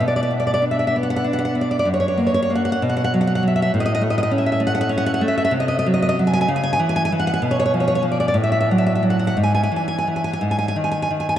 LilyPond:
\new Staff \with { instrumentName = "Nylon-string guitar" } { \time 6/8 \key b \dorian \tempo 4. = 65 << { r32 d''32 d''32 d''32 r32 d''32 d''32 d''32 r32 e''32 e''32 e''32 r32 fis''32 fis''32 fis''32 r32 fis''32 fis''32 fis''32 r32 d''32 d''32 d''32 | r32 cis''32 cis''32 cis''32 r32 cis''32 cis''32 cis''32 r32 fis''32 fis''32 fis''32 r32 fis''32 fis''32 fis''32 r32 fis''32 fis''32 fis''32 r32 e''32 e''32 e''32 | \key a \lydian r32 dis''32 dis''32 dis''32 r32 dis''32 dis''32 dis''32 r32 e''32 e''32 e''32 r32 fis''32 fis''32 fis''32 r32 fis''32 fis''32 fis''32 r32 e''32 e''32 e''32 | r32 ees''32 ees''32 ees''32 r32 ees''32 ees''32 ees''32 r32 gis''32 gis''32 gis''32 r32 gis''32 gis''32 gis''32 r32 gis''32 gis''32 gis''32 r32 fis''32 fis''32 fis''32 |
r32 cis''32 cis''32 cis''32 r32 cis''32 cis''32 cis''32 r32 d''32 d''32 d''32 r32 e''32 e''32 e''32 r32 e''32 e''32 e''32 r32 fis''32 fis''32 fis''32 | r32 gis''32 gis''32 gis''32 r32 gis''32 gis''32 gis''32 r32 gis''32 gis''32 gis''32 r32 gis''32 gis''32 gis''32 r32 gis''32 gis''32 gis''32 r32 gis''32 gis''32 r32 | } \\ { b,8 b8 d'8 b8 d'8 b8 | fis,8 ais8 ais8 b,8 fis8 fis8 | a,8 a8 cis'8 a8 cis'8 a8 | c8 ges8 ges8 cis8 e8 e8 |
b,8 f8 f8 a,8 fis8 fis8 | gis,8 e8 e8 gis,8 dis8 dis8 | } >> }